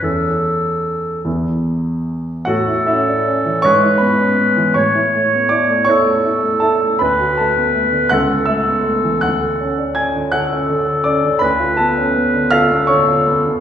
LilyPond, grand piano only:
<<
  \new Staff \with { instrumentName = "Grand piano" } { \time 6/8 \key a \major \tempo 4. = 54 r2. | <fis' fis''>8 <e' e''>4 <cis'' cis'''>8 <b' b''>4 | <cis'' cis'''>4 <d'' d'''>8 <cis'' cis'''>4 <a' a''>8 | <b' b''>8 <a' a''>4 <fis'' fis'''>8 <e'' e'''>4 |
<fis'' fis'''>4 <gis'' gis'''>8 <fis'' fis'''>4 <d'' d'''>8 | <b' b''>8 <a' a''>4 <f'' f'''>8 <cis'' cis'''>4 | }
  \new Staff \with { instrumentName = "Grand piano" } { \time 6/8 \key a \major <e, cis' e'>4. <e, b e'>4. | a,16 e'16 cis'16 d'16 cis'16 e16 gis,16 e'16 b16 cis'16 b16 e16 | a,16 e'16 a16 b16 e'16 a16 e'16 a16 e'16 a16 e'16 a16 | d,16 fis'16 a16 b16 a16 d16 cis,16 a'16 a16 b16 a16 e16 |
d,16 a'16 cis'16 d'16 cis'16 d16 a'16 cis'16 d16 a'16 cis'16 d16 | d,16 f'16 b16 cis'16 b16 d16 f'16 b16 d16 f'16 b16 d16 | }
>>